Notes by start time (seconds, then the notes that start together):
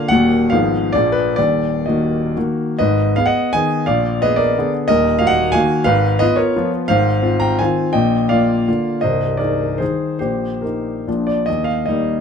Already playing: F5
0.08 D#1 D#2 D#3 A#3 F#5
0.13 F#4
0.50 G#1 G#2 F3 B3 G#4 F5
0.93 A#1 A#2 F3 A#3 G#4 D5
1.12 B4
1.36 D#1 D#2 D5
1.86 D#3 A#3 F#4 D#5
2.37 D#3 A#3 F#4
2.79 G#1 G#2 B4 D#5
3.16 B3 G#4 F5
3.26 D#5 F#5
3.53 D#3 B3 G#4 D#5 G#5
3.86 A#1 A#2 D5 F5
4.22 B3 G#4 B4 D#5
4.36 A#4 D5
4.58 D3 B3 G#4
4.88 D#1 D#2 A#4 D#5
5.19 A#3 F#4 F5
5.27 D#5 F#5
5.52 D#3 A#3 F#4 F5 G#5
5.84 G#1 G#2 B4 F5
6.19 B3 F4 B4 D#5
6.36 A#4 C#5
6.56 F3 B3 F4
6.88 G#1 G#2 C5 F5
7.22 C4 F4
7.40 G5 A#5
7.59 D#3 C4 F4 F5 G#5
7.93 A#1 A#2 D#5 G5
8.29 A#3 F4 D5 F5
8.68 D3 A#3 F4
9.01 C1 C2 C5 D#5
9.37 D#4 G#4 A#4 D5
9.78 D#3 D#4 G#4 C5
10.19 A#1 A#2 G4 C5
10.62 D#4 G4 A#4
11.07 A#1 A#2 F3 D4 F4
11.27 D5
11.46 D#2 D#5
11.64 F5
11.86 G3 A#3 D#4 D#5